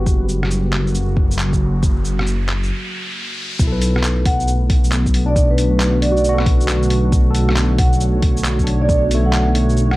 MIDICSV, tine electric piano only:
0, 0, Header, 1, 2, 480
1, 0, Start_track
1, 0, Key_signature, 2, "minor"
1, 0, Tempo, 441176
1, 73, Time_signature, 4, 2, 24, 8
1, 10842, End_track
2, 0, Start_track
2, 0, Title_t, "Tine electric piano"
2, 0, Program_c, 0, 4
2, 0, Control_c, 0, 64, 127
2, 0, Note_on_c, 0, 66, 74
2, 89, Control_c, 0, 64, 0
2, 276, Note_off_c, 0, 66, 0
2, 306, Control_c, 0, 64, 127
2, 3924, Control_c, 0, 64, 0
2, 3943, Note_on_c, 0, 64, 49
2, 3996, Note_on_c, 0, 69, 55
2, 4051, Note_on_c, 0, 71, 54
2, 4135, Control_c, 0, 64, 127
2, 4543, Note_off_c, 0, 64, 0
2, 4570, Note_off_c, 0, 69, 0
2, 4599, Note_off_c, 0, 71, 0
2, 5722, Note_on_c, 0, 62, 73
2, 6281, Note_off_c, 0, 62, 0
2, 6656, Note_on_c, 0, 66, 65
2, 6829, Note_off_c, 0, 66, 0
2, 6843, Note_on_c, 0, 66, 75
2, 6898, Note_on_c, 0, 69, 57
2, 6952, Note_on_c, 0, 71, 55
2, 7433, Note_off_c, 0, 66, 0
2, 7462, Note_off_c, 0, 69, 0
2, 7490, Note_off_c, 0, 71, 0
2, 7948, Note_on_c, 0, 69, 66
2, 8541, Note_off_c, 0, 69, 0
2, 9398, Note_on_c, 0, 62, 56
2, 9950, Note_on_c, 0, 57, 81
2, 10000, Note_off_c, 0, 62, 0
2, 10546, Note_off_c, 0, 57, 0
2, 10842, End_track
0, 0, End_of_file